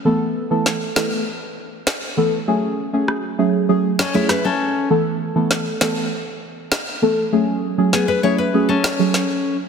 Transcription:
<<
  \new Staff \with { instrumentName = "Nylon-string guitar" } { \time 4/4 \key fis \minor \tempo 4 = 99 r1 | r2 r8 <cis' a'>16 <e' cis''>16 b'16 <cis' a'>8. | r1 | r4 <b gis'>16 b'16 <e' cis''>16 b'8 <cis' a'>4. r16 | }
  \new Staff \with { instrumentName = "Synth stab" } { \time 4/4 \key fis \minor <e a b a'>8. <e a b a'>8. <e a b a'>8 r4. <e a b a'>16 r16 | <fis a cis' gis'>8. <fis a cis' gis'>8. <fis a cis' gis'>8 <fis a cis' gis'>16 r8 <fis a cis' gis'>16 r4 | <e a b a'>8. <e a b a'>8. <e a b a'>8 r4. <e a b a'>16 r16 | <fis a cis' gis'>8. <fis a cis' gis'>8. <fis a cis' gis'>8 <fis a cis' gis'>16 r8 <fis a cis' gis'>16 r4 | }
  \new DrumStaff \with { instrumentName = "Drums" } \drummode { \time 4/4 r4 sn8 sn8 r4 sn4 | r4 ss4 r8 sn8 <ss sn>4 | r4 sn8 sn8 r4 sn4 | r4 sn4 r8 sn8 sn4 | }
>>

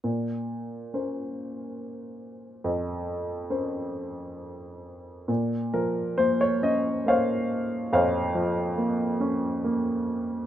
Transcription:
<<
  \new Staff \with { instrumentName = "Upright piano" } { \time 3/4 \key bes \minor \tempo 4 = 69 << { r2. | r2. | r8 bes'8 c''16 des''16 ees''8 f''4 | f''4 r2 | } \\ { r2. | r2. | r2 <c'' des''>4 | <c'' des''>4. r4. | } >> }
  \new Staff \with { instrumentName = "Upright piano" } { \time 3/4 \key bes \minor bes,4 <des' bes' c''>2 | f,4 <des' bes' c''>2 | bes,8 f8 bes8 des'8 bes4 | f,8 f8 bes8 des'8 bes4 | }
>>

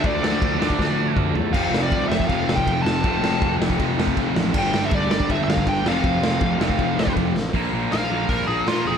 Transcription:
<<
  \new Staff \with { instrumentName = "Lead electric guitar" } { \time 4/4 \key f \lydian \tempo 4 = 160 d''2. r4 | f''8. d''8. e''8 f''8. g''8. a''8~ | a''4. r2 r8 | g''8. e''16 d''4 e''16. e''32 f''8 g''8 f''8~ |
f''2. r4 | \key bes \major r4 f''4 bes'8 aes'8 f'8 aes'8 | }
  \new Staff \with { instrumentName = "Overdriven electric guitar" } { \time 4/4 \key f \lydian <d f a d'>2.~ <d f a d'>8 r8 | <f, c f a c'>1 | <f, c f a c'>1 | <g, d g b d'>2.~ <g, d g b d'>8 <f, c f a c'>8~ |
<f, c f a c'>2.~ <f, c f a c'>8 r8 | \key bes \major <bes, f bes d' f' bes'>8 <bes, f bes d' f' bes'>8 <bes, f bes d' f' bes'>8 <bes, f bes d' f' bes'>8 <bes, f bes d' f' bes'>8 <bes, f bes d' f' bes'>8 <bes, f bes d' f' bes'>8 <bes, f bes d' f' bes'>8 | }
  \new Staff \with { instrumentName = "Distorted electric guitar" } { \clef bass \time 4/4 \key f \lydian <d a d'>4. <d a d'>2 r8 | <f, c f>2 <f, c f>2 | <f, c f>2 <f, c f>2 | <g, d g>2 <g, d g>4. <f, c f>8~ |
<f, c f>4. <f, c f>2 r8 | \key bes \major <bes, f bes>8 <bes, f bes>8 <bes, f bes>8 <bes, f bes>8 <bes, f bes>8 <bes, f bes>8 <bes, f bes>8 <bes, f bes>8 | }
  \new Staff \with { instrumentName = "Distorted electric guitar" } { \clef bass \time 4/4 \key f \lydian r1 | <f, c f>8 <f, c f>8 <f, c f>8 <f, c f>8 <f, c f>8 <f, c f>8 <f, c f>8 <f, c f>8 | <f, c f>8 <f, c f>8 <f, c f>8 <f, c f>8 <f, c f>8 <f, c f>8 <f, c f>8 <f, c f>8 | <g, d g>8 <g, d g>8 <g, d g>8 <g, d g>8 <g, d g>8 <g, d g>8 <g, d g>8 <f, c f>8 |
<f, c f>8 <f, c f>8 <f, c f>8 <f, c f>8 <f, c f>8 <f, c f>8 <f, c f>8 <f, c f>8 | \key bes \major r1 | }
  \new Staff \with { instrumentName = "Picked electric bass" } { \clef bass \time 4/4 \key f \lydian d,8 d,8 d,8 d,8 d,4 d,8 e,8 | f,,8 f,,8 c,8 f,,8 f,,8 f,,8 f,,8 f,,8 | f,,8 f,,8 f,,8 f,,8 f,,4 f,,8 a,,8 | g,,8 g,,8 d,8 g,,8 g,,8 g,,8 g,,8 f,,8 |
f,,8 f,,8 f,,8 f,,8 f,,4 f,,8 a,,8 | \key bes \major bes,,8 bes,,8 bes,,8 bes,,8 bes,,8 bes,,8 bes,8 f,,8 | }
  \new DrumStaff \with { instrumentName = "Drums" } \drummode { \time 4/4 <bd cymr>8 sn8 <bd cymr>8 sn16 bd16 <bd sn>4 <bd toml>8 tomfh8 | <cymc bd>8 sn8 <bd cymr>8 sn16 bd16 <bd cymr>8 sn16 bd16 <bd cymr>8 sn8 | <bd cymr>8 sn8 <bd cymr>8 sn16 bd16 <bd cymr>8 sn16 bd16 <bd cymr>8 sn8 | <cymc bd>8 sn8 <bd cymr>8 sn16 bd16 <bd cymr>8 sn16 bd16 <bd cymr>8 sn8 |
<bd cymr>8 sn8 <bd cymr>8 sn16 bd16 <bd cymr>8 sn16 bd16 <bd cymr>8 sn8 | <hho bd>4 <hho sn>4 <hho bd>4 <hho sn>4 | }
>>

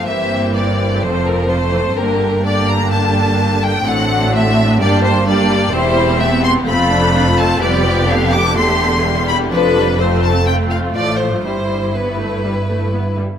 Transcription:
<<
  \new Staff \with { instrumentName = "Violin section" } { \time 4/4 \key g \dorian \tempo 4 = 126 e''4 d''4 c''8 bes'8 c''4 | bes'4 d''8 bes''8 a''4. g''8 | fis''4 e''4 d''8 c''8 d''4 | \key c \major c''4 e''8 c'''8 b''4. a''8 |
d''4 f''8 d'''8 c'''4. b''8 | b'4 c''8 a''8 g''8 f''8 d''8 c''8 | c''4 b'2~ b'8 r8 | }
  \new Staff \with { instrumentName = "Violin section" } { \time 4/4 \key g \dorian << { g'2 a'4 a'4 | g'4 g'2. | fis'2 g'4 g'4 | \key c \major g'4 g'4 a'2 |
b'4 a'2 g'4 | f'4 f'2. | e'2.~ e'8 r8 | } \\ { c'2 c'4 c'4 | d'4 d'2. | d'2 d'4 d'4 | e'4 g'4 f'4 f'4 |
g'2 g'2 | a'4 a'4 f'2 | e'2.~ e'8 r8 | } >> }
  \new Staff \with { instrumentName = "Viola section" } { \time 4/4 \key g \dorian << { bes2 a4 a4 | bes4 bes2. | c'2 bes4 bes4 | \key c \major c'8 c'4. c'8 d'8 d'8 c'8 |
b2 a4 g4 | d'4 c'4 c'4 f4 | g4 b8 a8 g8 a8 b8 g8 | } \\ { e2 f4 f8 e8 | d4 d2. | d2 g4 g4 | g4 b4 a2 |
g8 f8 d2. | f8 g8 a4 a2 | g4 r2. | } >> }
  \new Staff \with { instrumentName = "Cello section" } { \clef bass \time 4/4 \key g \dorian g,2 f,2 | g,1 | a,2 g,2 | \key c \major e,2 f,2 |
f,2 e,2 | f,2. a,4 | g,2.~ g,8 r8 | }
  \new Staff \with { instrumentName = "Double bass section" } { \clef bass \time 4/4 \key g \dorian g,,2 f,,2 | g,,1 | a,,2 g,,2 | \key c \major e,,2 f,,2 |
f,,2 e,,2 | f,,2. a,,4 | g,,2.~ g,,8 r8 | }
>>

